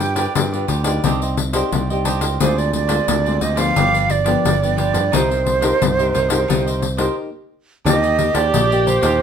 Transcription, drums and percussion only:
0.00 pandeiro medium
0.16 pandeiro medium
0.35 pandeiro medium
0.54 pandeiro soft
0.68 pandeiro medium
0.84 pandeiro medium
1.04 pandeiro medium
1.22 pandeiro soft
1.37 pandeiro medium
1.53 pandeiro medium
1.72 pandeiro medium
1.90 pandeiro soft
2.05 pandeiro medium
2.21 pandeiro medium
2.40 pandeiro medium
2.58 pandeiro soft
2.73 pandeiro soft
2.89 pandeiro medium
3.08 pandeiro medium
3.26 pandeiro soft
3.41 pandeiro medium
3.57 pandeiro medium
3.76 pandeiro medium
3.95 pandeiro soft
4.10 pandeiro soft
4.26 pandeiro medium
4.45 pandeiro medium
4.63 pandeiro soft
4.78 pandeiro soft
4.94 pandeiro medium
5.13 pandeiro medium
5.31 pandeiro soft
5.46 pandeiro medium
5.62 pandeiro medium
5.82 pandeiro medium
5.99 pandeiro soft
6.15 pandeiro soft
6.30 pandeiro medium
6.50 pandeiro medium
6.67 pandeiro soft
6.82 pandeiro soft
6.98 pandeiro medium
7.86 pandeiro medium
8.04 pandeiro soft
8.19 pandeiro medium
8.35 pandeiro medium
8.54 pandeiro medium
8.72 pandeiro soft
8.87 pandeiro medium
9.03 pandeiro medium

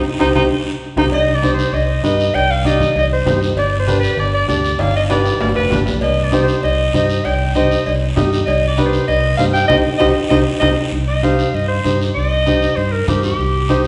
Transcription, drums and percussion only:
0.19 high conga medium
0.19 high timbale loud
0.35 high conga loud
0.35 high timbale medium
0.35 long guiro loud
0.97 high conga loud
0.97 high timbale medium
0.97 long guiro loud
1.12 cowbell loud
1.12 high conga soft
1.12 long guiro medium
1.43 high conga medium
1.43 short guiro medium
1.59 short guiro medium
1.73 cowbell medium
1.73 high conga soft
1.73 long guiro medium
2.04 high conga medium
2.04 short guiro medium
2.20 short guiro medium
2.34 cowbell loud
2.34 high conga soft
2.34 long guiro medium
2.65 high conga medium
2.65 short guiro medium
2.80 low conga medium
2.80 short guiro medium
2.96 cowbell medium
2.96 high conga soft
2.96 long guiro medium
3.27 high conga medium
3.27 low conga medium
3.27 low timbale medium
3.27 short guiro medium
3.43 short guiro medium
3.57 cowbell loud
3.57 high conga soft
3.57 long guiro medium
3.87 high conga medium
3.87 short guiro medium
4.03 short guiro medium
4.18 cowbell medium
4.18 high conga soft
4.18 long guiro medium
4.49 high conga medium
4.49 short guiro medium
4.65 short guiro medium
4.79 cowbell loud
4.79 high conga soft
4.79 high timbale loud
4.79 long guiro medium
5.10 high conga medium
5.10 high timbale loud
5.10 short guiro medium
5.25 high timbale medium
5.25 short guiro medium
5.41 cowbell medium
5.41 high conga soft
5.41 low timbale loud
5.41 long guiro medium
5.55 low timbale medium
5.70 high conga medium
5.70 low conga medium
5.70 low timbale medium
5.70 short guiro medium
5.86 low timbale medium
5.86 short guiro medium
6.01 cowbell loud
6.01 high conga soft
6.01 long guiro medium
6.32 high conga medium
6.32 short guiro medium
6.48 short guiro medium
6.63 cowbell medium
6.63 high conga soft
6.63 long guiro medium
6.94 high conga medium
6.94 short guiro medium
7.10 short guiro medium
7.25 cowbell loud
7.25 high conga soft
7.25 long guiro medium
7.55 high conga medium
7.55 short guiro medium
7.71 short guiro medium
7.86 cowbell medium
7.86 high conga soft
7.86 long guiro medium
8.17 high conga medium
8.17 low conga medium
8.17 low timbale medium
8.17 short guiro medium
8.33 short guiro medium
8.47 cowbell loud
8.47 high conga soft
8.47 long guiro medium
8.78 high conga medium
8.78 short guiro medium
8.93 short guiro medium
9.08 cowbell medium
9.08 high conga soft
9.08 long guiro medium
9.39 high conga medium
9.39 low timbale medium
9.39 short guiro medium
9.55 short guiro medium
9.69 high conga loud
9.69 high timbale loud
9.69 long guiro medium
10.00 high conga medium
10.00 high timbale loud
10.00 long guiro loud
10.31 high conga medium
10.31 high timbale loud
10.31 long guiro loud
10.61 high conga loud
10.61 high timbale loud
10.61 long guiro loud
10.92 high conga soft
10.92 long guiro medium
11.24 high conga medium
11.24 short guiro medium
11.39 short guiro medium
11.54 high conga soft
11.54 long guiro medium
11.85 high conga medium
11.85 short guiro medium
12.02 short guiro medium
12.16 high conga soft
12.16 long guiro medium
12.47 high conga medium
12.47 short guiro medium
12.62 short guiro medium
12.77 high conga soft
12.77 long guiro medium
13.08 high conga medium
13.08 low conga medium
13.08 short guiro medium
13.23 short guiro medium
13.38 high conga soft
13.38 long guiro medium
13.69 high conga medium
13.69 short guiro medium

